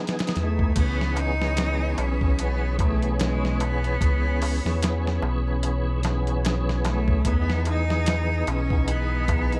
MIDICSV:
0, 0, Header, 1, 7, 480
1, 0, Start_track
1, 0, Key_signature, 4, "minor"
1, 0, Tempo, 810811
1, 458, Time_signature, 4, 2, 24, 8
1, 5681, End_track
2, 0, Start_track
2, 0, Title_t, "String machine"
2, 0, Program_c, 0, 50
2, 0, Note_on_c, 0, 68, 73
2, 0, Note_on_c, 0, 87, 85
2, 434, Note_off_c, 0, 68, 0
2, 435, Note_off_c, 0, 87, 0
2, 453, Note_on_c, 0, 83, 71
2, 456, Note_on_c, 0, 73, 77
2, 4271, Note_off_c, 0, 83, 0
2, 4273, Note_off_c, 0, 73, 0
2, 4295, Note_on_c, 0, 75, 80
2, 4296, Note_on_c, 0, 80, 72
2, 5681, Note_off_c, 0, 75, 0
2, 5681, Note_off_c, 0, 80, 0
2, 5681, End_track
3, 0, Start_track
3, 0, Title_t, "Tonewheel organ"
3, 0, Program_c, 1, 16
3, 0, Note_on_c, 1, 52, 92
3, 0, Note_on_c, 1, 59, 80
3, 0, Note_on_c, 1, 63, 84
3, 0, Note_on_c, 1, 68, 94
3, 428, Note_off_c, 1, 52, 0
3, 431, Note_off_c, 1, 59, 0
3, 434, Note_off_c, 1, 63, 0
3, 437, Note_off_c, 1, 68, 0
3, 453, Note_on_c, 1, 52, 88
3, 455, Note_on_c, 1, 59, 85
3, 458, Note_on_c, 1, 61, 86
3, 460, Note_on_c, 1, 68, 99
3, 801, Note_off_c, 1, 52, 0
3, 802, Note_off_c, 1, 59, 0
3, 803, Note_off_c, 1, 61, 0
3, 805, Note_off_c, 1, 68, 0
3, 825, Note_on_c, 1, 52, 85
3, 833, Note_on_c, 1, 59, 80
3, 840, Note_on_c, 1, 61, 81
3, 845, Note_on_c, 1, 68, 100
3, 1632, Note_off_c, 1, 52, 0
3, 1636, Note_off_c, 1, 59, 0
3, 1639, Note_off_c, 1, 61, 0
3, 1642, Note_off_c, 1, 68, 0
3, 1646, Note_on_c, 1, 52, 96
3, 1653, Note_on_c, 1, 59, 84
3, 1657, Note_on_c, 1, 61, 83
3, 1666, Note_on_c, 1, 68, 109
3, 2347, Note_off_c, 1, 52, 0
3, 2351, Note_off_c, 1, 59, 0
3, 2353, Note_off_c, 1, 61, 0
3, 2357, Note_off_c, 1, 68, 0
3, 2371, Note_on_c, 1, 52, 91
3, 2374, Note_on_c, 1, 59, 86
3, 2377, Note_on_c, 1, 61, 84
3, 2381, Note_on_c, 1, 68, 103
3, 2720, Note_off_c, 1, 52, 0
3, 2721, Note_off_c, 1, 59, 0
3, 2723, Note_off_c, 1, 61, 0
3, 2725, Note_off_c, 1, 68, 0
3, 2743, Note_on_c, 1, 52, 92
3, 2751, Note_on_c, 1, 59, 78
3, 2757, Note_on_c, 1, 61, 80
3, 2762, Note_on_c, 1, 68, 102
3, 3551, Note_off_c, 1, 52, 0
3, 3554, Note_off_c, 1, 59, 0
3, 3557, Note_off_c, 1, 61, 0
3, 3560, Note_off_c, 1, 68, 0
3, 3563, Note_on_c, 1, 52, 94
3, 3571, Note_on_c, 1, 59, 84
3, 3578, Note_on_c, 1, 61, 85
3, 3585, Note_on_c, 1, 68, 105
3, 4266, Note_off_c, 1, 52, 0
3, 4270, Note_off_c, 1, 59, 0
3, 4273, Note_off_c, 1, 61, 0
3, 4277, Note_off_c, 1, 68, 0
3, 4298, Note_on_c, 1, 52, 95
3, 4300, Note_on_c, 1, 59, 84
3, 4302, Note_on_c, 1, 63, 86
3, 4307, Note_on_c, 1, 68, 105
3, 4643, Note_off_c, 1, 52, 0
3, 4644, Note_off_c, 1, 59, 0
3, 4645, Note_off_c, 1, 63, 0
3, 4648, Note_off_c, 1, 68, 0
3, 4665, Note_on_c, 1, 52, 91
3, 4673, Note_on_c, 1, 59, 86
3, 4678, Note_on_c, 1, 63, 82
3, 4683, Note_on_c, 1, 68, 98
3, 5472, Note_off_c, 1, 52, 0
3, 5476, Note_off_c, 1, 59, 0
3, 5478, Note_off_c, 1, 63, 0
3, 5481, Note_off_c, 1, 68, 0
3, 5494, Note_on_c, 1, 52, 91
3, 5501, Note_on_c, 1, 59, 86
3, 5507, Note_on_c, 1, 63, 81
3, 5513, Note_on_c, 1, 68, 110
3, 5681, Note_off_c, 1, 52, 0
3, 5681, Note_off_c, 1, 59, 0
3, 5681, Note_off_c, 1, 63, 0
3, 5681, Note_off_c, 1, 68, 0
3, 5681, End_track
4, 0, Start_track
4, 0, Title_t, "Cello"
4, 0, Program_c, 2, 42
4, 225, Note_on_c, 2, 57, 91
4, 460, Note_on_c, 2, 59, 98
4, 469, Note_off_c, 2, 57, 0
4, 704, Note_on_c, 2, 63, 116
4, 712, Note_off_c, 2, 59, 0
4, 1186, Note_on_c, 2, 61, 95
4, 1195, Note_off_c, 2, 63, 0
4, 1421, Note_on_c, 2, 59, 94
4, 1430, Note_off_c, 2, 61, 0
4, 1657, Note_off_c, 2, 59, 0
4, 1661, Note_on_c, 2, 57, 88
4, 1882, Note_off_c, 2, 57, 0
4, 1908, Note_on_c, 2, 56, 93
4, 2142, Note_on_c, 2, 59, 101
4, 2151, Note_off_c, 2, 56, 0
4, 3100, Note_off_c, 2, 59, 0
4, 4071, Note_on_c, 2, 57, 86
4, 4310, Note_on_c, 2, 59, 96
4, 4318, Note_off_c, 2, 57, 0
4, 4544, Note_off_c, 2, 59, 0
4, 4551, Note_on_c, 2, 63, 110
4, 5027, Note_on_c, 2, 61, 100
4, 5036, Note_off_c, 2, 63, 0
4, 5273, Note_on_c, 2, 59, 99
4, 5282, Note_off_c, 2, 61, 0
4, 5681, Note_off_c, 2, 59, 0
4, 5681, End_track
5, 0, Start_track
5, 0, Title_t, "Analog synth bass"
5, 0, Program_c, 3, 38
5, 216, Note_on_c, 3, 40, 94
5, 432, Note_off_c, 3, 40, 0
5, 449, Note_on_c, 3, 37, 96
5, 1154, Note_off_c, 3, 37, 0
5, 1174, Note_on_c, 3, 35, 99
5, 2357, Note_off_c, 3, 35, 0
5, 2373, Note_on_c, 3, 37, 96
5, 2727, Note_off_c, 3, 37, 0
5, 2755, Note_on_c, 3, 40, 92
5, 3077, Note_off_c, 3, 40, 0
5, 3093, Note_on_c, 3, 35, 105
5, 4276, Note_off_c, 3, 35, 0
5, 4292, Note_on_c, 3, 40, 97
5, 4995, Note_off_c, 3, 40, 0
5, 5018, Note_on_c, 3, 35, 104
5, 5681, Note_off_c, 3, 35, 0
5, 5681, End_track
6, 0, Start_track
6, 0, Title_t, "Darbuka"
6, 452, Note_on_c, 9, 63, 52
6, 512, Note_off_c, 9, 63, 0
6, 596, Note_on_c, 9, 63, 26
6, 655, Note_off_c, 9, 63, 0
6, 688, Note_on_c, 9, 63, 81
6, 747, Note_off_c, 9, 63, 0
6, 833, Note_on_c, 9, 63, 39
6, 893, Note_off_c, 9, 63, 0
6, 932, Note_on_c, 9, 63, 55
6, 991, Note_off_c, 9, 63, 0
6, 1072, Note_on_c, 9, 63, 22
6, 1131, Note_off_c, 9, 63, 0
6, 1172, Note_on_c, 9, 63, 87
6, 1231, Note_off_c, 9, 63, 0
6, 1319, Note_on_c, 9, 63, 44
6, 1379, Note_off_c, 9, 63, 0
6, 1417, Note_on_c, 9, 63, 49
6, 1476, Note_off_c, 9, 63, 0
6, 1561, Note_on_c, 9, 63, 25
6, 1620, Note_off_c, 9, 63, 0
6, 1659, Note_on_c, 9, 63, 86
6, 1718, Note_off_c, 9, 63, 0
6, 1796, Note_on_c, 9, 63, 41
6, 1855, Note_off_c, 9, 63, 0
6, 1897, Note_on_c, 9, 63, 49
6, 1956, Note_off_c, 9, 63, 0
6, 2040, Note_on_c, 9, 63, 25
6, 2099, Note_off_c, 9, 63, 0
6, 2136, Note_on_c, 9, 63, 87
6, 2195, Note_off_c, 9, 63, 0
6, 2272, Note_on_c, 9, 63, 41
6, 2332, Note_off_c, 9, 63, 0
6, 2374, Note_on_c, 9, 63, 56
6, 2433, Note_off_c, 9, 63, 0
6, 2519, Note_on_c, 9, 63, 26
6, 2578, Note_off_c, 9, 63, 0
6, 2619, Note_on_c, 9, 63, 91
6, 2679, Note_off_c, 9, 63, 0
6, 2763, Note_on_c, 9, 63, 37
6, 2822, Note_off_c, 9, 63, 0
6, 2860, Note_on_c, 9, 63, 55
6, 2919, Note_off_c, 9, 63, 0
6, 2997, Note_on_c, 9, 63, 27
6, 3056, Note_off_c, 9, 63, 0
6, 3093, Note_on_c, 9, 63, 91
6, 3152, Note_off_c, 9, 63, 0
6, 3243, Note_on_c, 9, 63, 37
6, 3303, Note_off_c, 9, 63, 0
6, 3340, Note_on_c, 9, 63, 53
6, 3399, Note_off_c, 9, 63, 0
6, 3480, Note_on_c, 9, 63, 23
6, 3540, Note_off_c, 9, 63, 0
6, 3580, Note_on_c, 9, 63, 99
6, 3639, Note_off_c, 9, 63, 0
6, 3720, Note_on_c, 9, 63, 43
6, 3779, Note_off_c, 9, 63, 0
6, 3819, Note_on_c, 9, 63, 53
6, 3878, Note_off_c, 9, 63, 0
6, 3959, Note_on_c, 9, 63, 27
6, 4018, Note_off_c, 9, 63, 0
6, 4055, Note_on_c, 9, 63, 99
6, 4114, Note_off_c, 9, 63, 0
6, 4196, Note_on_c, 9, 63, 42
6, 4256, Note_off_c, 9, 63, 0
6, 4299, Note_on_c, 9, 63, 56
6, 4358, Note_off_c, 9, 63, 0
6, 4441, Note_on_c, 9, 63, 27
6, 4501, Note_off_c, 9, 63, 0
6, 4540, Note_on_c, 9, 63, 82
6, 4599, Note_off_c, 9, 63, 0
6, 4678, Note_on_c, 9, 63, 43
6, 4737, Note_off_c, 9, 63, 0
6, 4782, Note_on_c, 9, 63, 60
6, 4841, Note_off_c, 9, 63, 0
6, 4925, Note_on_c, 9, 63, 26
6, 4984, Note_off_c, 9, 63, 0
6, 5020, Note_on_c, 9, 63, 103
6, 5079, Note_off_c, 9, 63, 0
6, 5160, Note_on_c, 9, 63, 40
6, 5219, Note_off_c, 9, 63, 0
6, 5255, Note_on_c, 9, 63, 60
6, 5314, Note_off_c, 9, 63, 0
6, 5400, Note_on_c, 9, 63, 25
6, 5459, Note_off_c, 9, 63, 0
6, 5499, Note_on_c, 9, 63, 98
6, 5559, Note_off_c, 9, 63, 0
6, 5635, Note_on_c, 9, 63, 44
6, 5681, Note_off_c, 9, 63, 0
6, 5681, End_track
7, 0, Start_track
7, 0, Title_t, "Drums"
7, 43, Note_on_c, 9, 42, 60
7, 51, Note_on_c, 9, 38, 89
7, 102, Note_off_c, 9, 42, 0
7, 111, Note_off_c, 9, 38, 0
7, 112, Note_on_c, 9, 42, 63
7, 120, Note_on_c, 9, 38, 86
7, 161, Note_off_c, 9, 42, 0
7, 161, Note_on_c, 9, 42, 60
7, 170, Note_off_c, 9, 38, 0
7, 170, Note_on_c, 9, 38, 82
7, 211, Note_off_c, 9, 42, 0
7, 211, Note_on_c, 9, 42, 63
7, 219, Note_off_c, 9, 38, 0
7, 219, Note_on_c, 9, 38, 52
7, 270, Note_off_c, 9, 42, 0
7, 278, Note_off_c, 9, 38, 0
7, 350, Note_on_c, 9, 36, 88
7, 409, Note_off_c, 9, 36, 0
7, 448, Note_on_c, 9, 42, 87
7, 448, Note_on_c, 9, 49, 91
7, 450, Note_on_c, 9, 36, 109
7, 507, Note_off_c, 9, 42, 0
7, 507, Note_off_c, 9, 49, 0
7, 509, Note_off_c, 9, 36, 0
7, 600, Note_on_c, 9, 38, 55
7, 659, Note_off_c, 9, 38, 0
7, 691, Note_on_c, 9, 42, 71
7, 750, Note_off_c, 9, 42, 0
7, 838, Note_on_c, 9, 38, 58
7, 897, Note_off_c, 9, 38, 0
7, 929, Note_on_c, 9, 42, 89
7, 937, Note_on_c, 9, 38, 118
7, 988, Note_off_c, 9, 42, 0
7, 996, Note_off_c, 9, 38, 0
7, 1171, Note_on_c, 9, 42, 65
7, 1230, Note_off_c, 9, 42, 0
7, 1310, Note_on_c, 9, 36, 97
7, 1369, Note_off_c, 9, 36, 0
7, 1413, Note_on_c, 9, 42, 86
7, 1472, Note_off_c, 9, 42, 0
7, 1651, Note_on_c, 9, 42, 66
7, 1652, Note_on_c, 9, 36, 94
7, 1711, Note_off_c, 9, 36, 0
7, 1711, Note_off_c, 9, 42, 0
7, 1791, Note_on_c, 9, 42, 40
7, 1850, Note_off_c, 9, 42, 0
7, 1891, Note_on_c, 9, 42, 80
7, 1900, Note_on_c, 9, 38, 112
7, 1951, Note_off_c, 9, 42, 0
7, 1959, Note_off_c, 9, 38, 0
7, 2042, Note_on_c, 9, 38, 49
7, 2101, Note_off_c, 9, 38, 0
7, 2133, Note_on_c, 9, 42, 68
7, 2192, Note_off_c, 9, 42, 0
7, 2275, Note_on_c, 9, 42, 41
7, 2334, Note_off_c, 9, 42, 0
7, 2373, Note_on_c, 9, 36, 107
7, 2377, Note_on_c, 9, 42, 85
7, 2432, Note_off_c, 9, 36, 0
7, 2437, Note_off_c, 9, 42, 0
7, 2615, Note_on_c, 9, 46, 78
7, 2674, Note_off_c, 9, 46, 0
7, 2760, Note_on_c, 9, 38, 53
7, 2819, Note_off_c, 9, 38, 0
7, 2856, Note_on_c, 9, 42, 94
7, 2865, Note_on_c, 9, 38, 115
7, 2916, Note_off_c, 9, 42, 0
7, 2924, Note_off_c, 9, 38, 0
7, 3004, Note_on_c, 9, 38, 55
7, 3063, Note_off_c, 9, 38, 0
7, 3333, Note_on_c, 9, 42, 88
7, 3392, Note_off_c, 9, 42, 0
7, 3572, Note_on_c, 9, 42, 69
7, 3580, Note_on_c, 9, 38, 52
7, 3631, Note_off_c, 9, 42, 0
7, 3639, Note_off_c, 9, 38, 0
7, 3713, Note_on_c, 9, 42, 41
7, 3772, Note_off_c, 9, 42, 0
7, 3817, Note_on_c, 9, 42, 84
7, 3825, Note_on_c, 9, 38, 118
7, 3876, Note_off_c, 9, 42, 0
7, 3884, Note_off_c, 9, 38, 0
7, 3963, Note_on_c, 9, 38, 50
7, 4022, Note_off_c, 9, 38, 0
7, 4053, Note_on_c, 9, 42, 67
7, 4061, Note_on_c, 9, 38, 59
7, 4112, Note_off_c, 9, 42, 0
7, 4120, Note_off_c, 9, 38, 0
7, 4190, Note_on_c, 9, 36, 92
7, 4249, Note_off_c, 9, 36, 0
7, 4291, Note_on_c, 9, 36, 105
7, 4291, Note_on_c, 9, 42, 86
7, 4350, Note_off_c, 9, 36, 0
7, 4350, Note_off_c, 9, 42, 0
7, 4438, Note_on_c, 9, 38, 55
7, 4497, Note_off_c, 9, 38, 0
7, 4531, Note_on_c, 9, 42, 69
7, 4590, Note_off_c, 9, 42, 0
7, 4679, Note_on_c, 9, 38, 54
7, 4738, Note_off_c, 9, 38, 0
7, 4773, Note_on_c, 9, 42, 93
7, 4782, Note_on_c, 9, 38, 124
7, 4833, Note_off_c, 9, 42, 0
7, 4841, Note_off_c, 9, 38, 0
7, 5016, Note_on_c, 9, 42, 67
7, 5075, Note_off_c, 9, 42, 0
7, 5152, Note_on_c, 9, 36, 88
7, 5212, Note_off_c, 9, 36, 0
7, 5255, Note_on_c, 9, 42, 87
7, 5314, Note_off_c, 9, 42, 0
7, 5494, Note_on_c, 9, 36, 92
7, 5495, Note_on_c, 9, 42, 65
7, 5553, Note_off_c, 9, 36, 0
7, 5554, Note_off_c, 9, 42, 0
7, 5639, Note_on_c, 9, 42, 41
7, 5681, Note_off_c, 9, 42, 0
7, 5681, End_track
0, 0, End_of_file